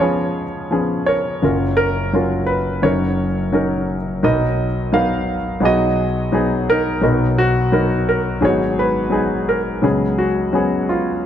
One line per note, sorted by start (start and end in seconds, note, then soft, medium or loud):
0.00 1.39 C#2 soft
0.00 1.39 C#3 soft
0.00 0.71 F3 medium
0.00 0.71 B3 soft
0.00 0.72 C#4 soft
0.00 1.44 F4 soft
0.00 0.72 G#4 medium
0.00 1.06 C#5 medium
0.00 1.43 D#5 medium
0.71 1.14 F3 soft
0.71 1.14 B3 soft
0.71 1.15 C#4 soft
0.71 1.15 G#4 medium
1.06 1.43 A#4 medium
1.06 1.80 C#5 medium
1.42 2.80 F#1 soft
1.42 2.80 F#2 soft
1.42 1.85 F#3 soft
1.42 1.85 C#4 soft
1.42 1.86 F4 soft
1.42 1.75 A#4 medium
1.77 2.14 A#4 medium
2.13 2.56 F#3 medium
2.13 2.57 C#4 soft
2.13 2.57 F4 soft
2.13 2.57 A#4 medium
2.46 2.84 B4 medium
2.82 4.20 F#1 soft
2.82 4.21 F#2 soft
2.82 3.25 F#3 medium
2.82 3.26 C#4 soft
2.82 3.26 D#4 soft
2.82 3.27 A#4 medium
2.82 4.28 C#5 medium
3.52 3.96 F#3 medium
3.52 3.96 C#4 soft
3.52 3.96 D#4 soft
3.52 3.97 A#4 medium
4.23 5.59 B1 soft
4.23 5.59 B2 soft
4.23 4.66 F#3 medium
4.23 4.66 B3 medium
4.23 4.67 D#4 soft
4.23 4.66 A#4 medium
4.23 4.96 D#5 medium
4.92 5.35 F#3 medium
4.92 5.36 B3 medium
4.92 5.36 D#4 soft
4.92 5.36 A#4 medium
4.92 5.66 F5 medium
5.60 6.99 B1 soft
5.60 6.99 B2 soft
5.60 6.04 F#3 medium
5.60 6.05 B3 soft
5.60 6.05 D#4 soft
5.60 6.06 G#4 medium
5.65 7.01 F#4 medium
5.65 6.65 D#5 medium
6.32 6.75 F#3 medium
6.32 6.75 B3 soft
6.32 6.70 D#4 soft
6.32 6.76 G#4 medium
6.70 7.01 D#4 medium
6.70 7.02 A#4 medium
7.01 8.39 B1 soft
7.01 8.39 B2 soft
7.01 7.45 F#3 medium
7.01 7.46 B3 medium
7.01 7.46 D#4 medium
7.01 7.46 A#4 medium
7.38 8.04 F#4 medium
7.72 8.15 F#3 medium
7.72 8.15 B3 medium
7.72 8.16 D#4 medium
7.72 8.07 A#4 medium
8.09 8.41 A#4 medium
8.41 9.80 G#1 soft
8.41 9.80 G#2 soft
8.41 8.85 F#3 medium
8.41 8.85 B3 soft
8.41 8.85 D#4 soft
8.41 8.85 G#4 medium
8.41 8.77 C#5 medium
8.46 9.82 F#4 medium
8.79 9.52 B4 medium
9.10 9.55 F#3 soft
9.10 9.55 B3 soft
9.10 9.56 D#4 soft
9.10 9.56 G#4 medium
9.49 9.85 A#4 medium
9.82 11.22 C#2 soft
9.82 11.22 C#3 soft
9.82 10.26 F#3 medium
9.82 10.27 B3 soft
9.82 10.27 C#4 soft
9.82 10.21 G#4 medium
10.18 10.92 F#4 medium
10.53 10.97 F#3 medium
10.53 10.89 B3 soft
10.53 10.98 C#4 soft
10.53 10.98 G#4 medium
10.89 11.24 B3 soft
10.89 11.26 F4 medium